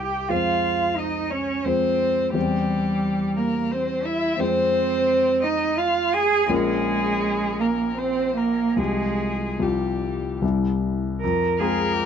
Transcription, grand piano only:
0.00 0.26 C2 soft
0.00 0.27 G3 soft
0.00 0.27 E4 soft
0.00 0.27 A#4 soft
0.30 1.62 F2 soft
0.30 1.62 G#3 soft
0.30 1.62 C4 soft
0.30 1.62 C5 soft
1.65 2.33 F2 soft
1.65 2.33 G#3 soft
1.65 2.33 C4 soft
1.65 2.33 C5 soft
2.34 4.35 E2 soft
2.34 4.35 G3 soft
2.34 4.35 C4 soft
2.34 4.36 C5 soft
4.38 6.45 F2 medium
4.38 6.45 G#3 soft
4.38 6.46 C4 soft
4.38 6.46 C5 soft
6.48 8.73 A#1 medium
6.48 8.74 F3 soft
6.48 8.74 C#4 soft
6.48 8.74 A#4 medium
8.76 9.58 C2 soft
8.76 9.58 F3 soft
8.76 9.58 F4 soft
8.76 9.59 G4 soft
9.59 10.39 C2 soft
9.59 10.39 F3 soft
9.59 10.39 F4 soft
9.59 10.40 G4 soft
10.42 11.19 C2 medium
10.42 11.20 G3 soft
10.42 11.20 E4 soft
10.42 11.20 G4 soft
11.24 11.58 F2 medium
11.60 12.06 G#3 medium
11.60 12.06 C4 medium
11.60 12.06 F4 medium

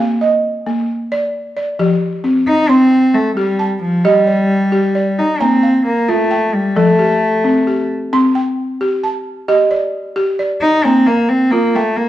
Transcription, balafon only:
0.00 0.44 A#3 medium
0.00 0.66 F5 medium
0.21 0.89 D#5 medium
0.67 1.12 A#3 medium
1.12 1.34 D5 medium
1.57 2.24 D5 medium
1.79 2.24 F3 medium
1.79 2.47 G4 medium
2.24 2.68 C4 medium
2.69 3.15 C4 medium
2.69 3.37 C6 medium
3.37 3.82 G4 medium
3.59 4.27 A5 medium
4.05 4.50 G4 medium
4.05 4.73 D#5 medium
4.27 4.94 D5 medium
4.72 5.18 G4 medium
4.95 5.63 D5 medium
5.40 5.86 A#3 medium
5.40 6.09 A#5 medium
5.63 6.31 F5 medium
6.08 6.54 F4 medium
6.31 6.99 G5 medium
6.76 7.22 F3 medium
6.76 7.45 A4 medium
6.99 7.66 G4 medium
7.44 7.90 C4 medium
7.67 8.35 G4 medium
8.13 8.58 C4 medium
8.13 8.81 C6 medium
8.35 9.03 G5 medium
8.81 9.26 G4 medium
9.03 9.71 A5 medium
9.48 9.94 G4 medium
9.48 10.17 D#5 medium
9.71 10.38 D5 medium
10.16 10.62 G4 medium
10.39 11.07 D5 medium
10.85 11.30 A#3 medium
10.85 11.53 A#5 medium
11.08 11.76 F5 medium
11.53 11.98 F4 medium
11.76 12.09 G5 medium

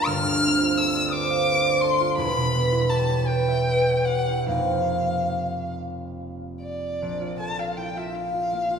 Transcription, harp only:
0.00 0.60 F4 medium
0.00 0.94 D5 medium
0.00 1.29 F5 medium
0.06 2.21 G1 medium
0.25 2.21 D2 medium
0.43 2.21 C4 medium
0.61 1.99 F4 medium
0.78 1.82 A4 medium
0.95 1.64 D5 medium
1.12 1.46 C5 medium
1.30 2.21 F5 medium
1.47 2.21 C5 medium
1.65 2.21 D5 medium
1.83 2.21 A4 medium
2.00 2.21 F4 medium
2.17 4.54 E1 medium
2.17 4.54 E2 medium
2.36 4.54 B2 medium
2.55 4.54 B3 medium
2.72 4.29 E4 medium
2.91 4.08 G4 medium
3.10 3.87 C#5 medium
3.29 3.67 B4 medium
3.49 4.54 E5 medium
3.68 4.54 B4 medium
3.89 4.54 C#5 medium
4.09 4.48 G4 medium
4.30 4.55 E4 medium
4.46 7.03 F2 medium
4.46 8.37 A#3 soft
4.46 7.04 D#4 soft
4.46 7.05 G4 soft
4.50 7.05 F1 soft
4.50 7.05 C5 soft
7.02 8.79 A#1 soft
7.21 7.58 F4 soft
7.40 8.79 A4 soft
7.59 7.96 F4 soft
7.78 8.10 E4 soft
7.97 8.33 F4 soft
8.15 8.47 E4 soft
8.34 8.69 F4 soft
8.52 8.79 A#3 soft
8.71 8.79 F4 soft

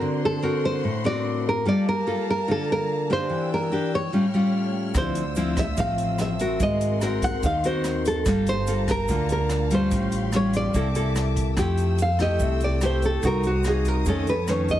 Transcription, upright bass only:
4.94 5.73 D2 medium
5.77 6.56 A1 medium
6.60 7.39 G#1 medium
7.43 8.22 D#2 medium
8.26 9.04 G1 loud
9.09 9.87 D2 medium
9.91 10.70 A1 loud
10.74 11.53 C2 medium
11.57 12.36 F2 loud
12.40 13.19 C2 medium
13.23 14.02 C2 loud
14.06 14.80 F2 medium

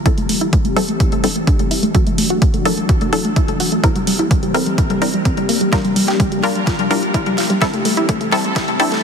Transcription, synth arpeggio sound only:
0.06 0.14 E4 loud
0.18 0.25 A3 medium
0.29 0.37 A3 medium
0.41 0.49 E4 medium
0.53 0.61 A3 medium
0.65 0.73 A3 medium
0.77 0.85 A4 medium
0.88 0.96 A3 medium
1.00 1.08 E4 medium
1.12 1.20 A3 medium
1.24 1.32 D4 medium
1.36 1.44 A3 medium
1.47 1.55 D4 medium
1.59 1.67 A3 medium
1.71 1.79 E4 medium
1.83 1.91 A3 medium
1.95 2.03 F#4 medium
2.07 2.14 A3 medium
2.18 2.26 A3 medium
2.30 2.38 F#4 medium
2.42 2.50 A3 medium
2.54 2.62 A3 medium
2.65 2.73 A#4 medium
2.77 2.85 A3 medium
2.89 2.97 F#4 medium
3.01 3.09 A3 medium
3.13 3.21 E4 medium
3.25 3.33 A3 medium
3.36 3.44 E4 medium
3.48 3.56 A3 medium
3.60 3.68 F#4 medium
3.72 3.80 A3 medium
3.84 3.92 E4 medium
3.96 4.03 G3 medium
4.07 4.15 G3 medium
4.19 4.27 E4 medium
4.31 4.39 G3 medium
4.43 4.51 G3 medium
4.54 4.62 A4 medium
4.66 4.74 G3 medium
4.78 4.86 E4 medium
4.90 4.98 G3 medium
5.02 5.10 D4 medium
5.14 5.21 G3 medium
5.25 5.33 C4 medium
5.37 5.45 G3 medium
5.49 5.57 A#3 medium
5.61 5.69 G3 medium
5.72 5.81 F4 loud
5.84 5.92 G3 medium
5.96 6.04 G3 medium
6.08 6.16 G4 medium
6.20 6.28 G3 medium
6.32 6.40 G3 medium
6.43 6.51 A#4 medium
6.55 6.63 G3 medium
6.67 6.75 F4 medium
6.79 6.87 G3 medium
6.91 6.99 E4 medium
7.03 7.10 G3 medium
7.14 7.22 E4 medium
7.26 7.34 G3 medium
7.38 7.46 F4 medium
7.50 7.58 G3 medium
7.62 7.70 E4 medium
7.74 7.81 A3 medium
7.85 7.93 A3 medium
7.97 8.05 E4 medium
8.09 8.17 A3 medium
8.21 8.29 A3 medium
8.32 8.40 A4 medium
8.44 8.52 A3 medium
8.56 8.64 E4 medium
8.68 8.76 A3 medium
8.80 8.88 D4 medium
8.92 9.00 A3 medium

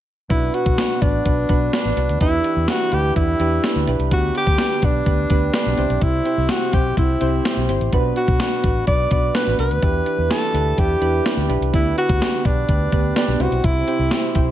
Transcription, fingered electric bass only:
0.30 0.48 B1 medium
0.66 0.75 B1 medium
1.02 1.20 A1 medium
1.26 1.44 B1 medium
1.49 1.67 B1 medium
1.85 1.94 A1 medium
1.96 2.06 C2 medium
2.09 2.18 D2 medium
2.21 2.39 E2 medium
2.56 2.65 E2 medium
2.92 3.10 D2 medium
3.16 3.34 E2 medium
3.39 3.58 E2 medium
3.76 3.85 D2 medium
3.87 3.96 B1 medium
3.99 4.08 C2 medium
4.11 4.29 D2 medium
4.47 4.56 D2 medium
4.82 5.00 B1 medium
5.06 5.24 D2 medium
5.30 5.48 D2 medium
5.66 5.75 B1 medium
5.78 5.87 C2 medium
5.90 5.99 B1 medium
6.02 6.20 C2 medium
6.38 6.47 C2 medium
6.73 6.91 B1 medium
6.97 7.15 C2 medium
7.21 7.39 C2 medium
7.57 7.66 B1 medium
7.68 7.77 G1 medium
7.80 7.89 A1 medium
7.93 8.10 B1 medium
8.28 8.37 B1 medium
8.64 8.82 A1 medium
8.87 9.05 B1 medium
9.11 9.29 B1 medium
9.47 9.56 A1 medium
9.58 9.68 C2 medium
9.71 9.80 D2 medium
9.83 10.01 E2 medium
10.18 10.27 E2 loud
10.54 10.72 D2 medium
10.78 10.96 E2 medium
11.01 11.19 E2 medium
11.37 11.46 D2 medium
11.49 11.58 B1 medium
11.61 11.70 C2 medium
11.73 11.91 D2 medium
12.09 12.18 D2 medium
12.45 12.63 B1 medium
12.69 12.86 D2 medium
12.92 13.10 D2 medium
13.28 13.37 B1 medium
13.40 13.49 C2 medium
13.51 13.60 B1 medium
13.64 13.82 C2 medium
13.99 14.08 C2 medium
14.36 14.51 B1 medium

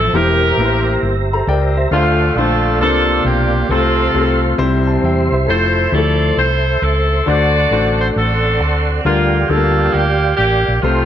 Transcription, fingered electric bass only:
0.13 0.51 E1 medium
0.57 0.96 A1 medium
1.03 1.41 G1 medium
1.47 1.85 C#2 medium
1.91 2.29 D2 medium
2.36 2.80 A#1 medium
2.80 3.18 C2 medium
3.25 3.63 B1 medium
3.69 4.07 C2 medium
4.14 4.52 C2 medium
4.59 4.97 C2 medium
5.03 5.28 E2 medium
5.32 5.45 C2 medium
5.48 5.86 F1 medium
5.92 6.30 D2 medium
6.37 6.75 C2 medium
6.82 7.20 C#2 medium
7.27 7.65 D2 medium
7.71 8.09 A1 medium
8.16 8.60 A1 medium
8.60 8.98 D2 medium
9.05 9.43 D2 medium
9.49 9.88 D2 medium
9.94 10.32 D2 medium
10.38 10.64 A1 medium
10.68 10.81 A#1 medium
10.83 11.05 C2 medium

